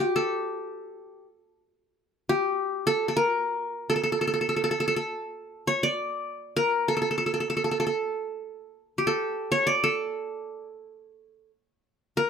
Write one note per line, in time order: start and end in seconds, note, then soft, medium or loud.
0.00 1.25 G4 medium
0.00 0.15 A4 medium
0.16 1.60 A4 medium
2.29 3.55 G4 medium
2.87 3.08 A4 medium
3.08 3.23 A4 medium
3.17 3.96 A#4 medium
3.90 3.95 A4 medium
3.96 4.03 A4 soft
4.04 4.12 A4 soft
4.12 4.21 A4 soft
4.21 4.27 A4 soft
4.27 4.33 A4 soft
4.34 4.41 A4 soft
4.41 4.48 A4 soft
4.49 4.56 A4 soft
4.56 4.63 A4 soft
4.64 4.71 A4 soft
4.71 4.80 A4 soft
4.80 4.87 A4 soft
4.88 4.96 A4 soft
4.96 6.14 A4 soft
5.67 5.89 C#5 medium
5.83 6.82 D5 medium
6.57 6.94 A#4 medium
6.88 6.96 A4 medium
6.97 7.01 A4 soft
7.02 7.10 A4 soft
7.11 7.17 A4 soft
7.18 7.26 A4 soft
7.26 7.33 A4 soft
7.34 7.40 A4 soft
7.40 7.49 A4 soft
7.50 7.56 A4 soft
7.57 7.64 A4 soft
7.64 7.71 A4 soft
7.71 7.79 A4 soft
7.80 7.86 A4 soft
7.87 9.04 A4 soft
8.98 10.24 G4 soft
9.07 9.83 A4 medium
9.52 9.73 C#5 medium
9.67 10.65 D5 medium
9.84 11.49 A4 medium
12.17 12.30 A#4 medium